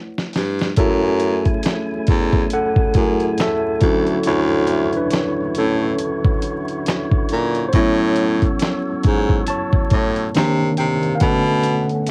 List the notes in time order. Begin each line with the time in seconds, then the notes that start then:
Already playing: A3 E4 B4 C#5 F#5
0.18 snare
0.33 G2, snare, open hi-hat
0.59 snare, closed hi-hat
0.76 F#2 F#3 A3 C#4 E4 G#4 A4 G#5, kick, closed hi-hat
1.20 closed hi-hat
1.45 kick, closed hi-hat
1.63 snare, clap, closed hi-hat
1.93 E2
2.07 E2, kick, closed hi-hat
2.33 kick
2.50 A4 F#5, closed hi-hat
2.76 F#2, kick
2.94 F#2 A3 E4 G#4, kick, closed hi-hat
3.20 closed hi-hat
3.38 A4 E5, snare, clap, closed hi-hat
3.81 D2 D3 F#3 C#4 E4 F#4 C#5, kick, closed hi-hat
4.07 closed hi-hat
4.24 D2 E4 C#5, closed hi-hat
4.67 closed hi-hat
4.93 closed hi-hat
4.97 D4 B4
5.11 snare, clap, closed hi-hat
5.41 A2
5.55 A2 C#4 A4, closed hi-hat
5.99 closed hi-hat
6.25 kick
6.42 closed hi-hat
6.68 closed hi-hat
6.86 snare, clap, closed hi-hat
7.11 kick
7.29 A#2, closed hi-hat
7.55 closed hi-hat
7.69 A4 C5
7.73 A2 F#3 B3 C#4 E4 C#5, kick, closed hi-hat
8.16 closed hi-hat
8.42 kick, closed hi-hat
8.59 snare, clap, closed hi-hat
8.89 G#2
9.03 G#2, kick, closed hi-hat
9.29 kick
9.47 C#5 A5, closed hi-hat
9.73 A2, kick
9.90 A2, kick, closed hi-hat
10.16 closed hi-hat
10.34 C3 D#3 A#3 D4, snare, clap, closed hi-hat
10.77 C3 A#4 G5, closed hi-hat
11.03 closed hi-hat
11.15 F5
11.20 B2 D3 A3 B3 C#4 A4 F#5, kick, closed hi-hat
11.63 closed hi-hat
11.89 closed hi-hat
12.07 closed hi-hat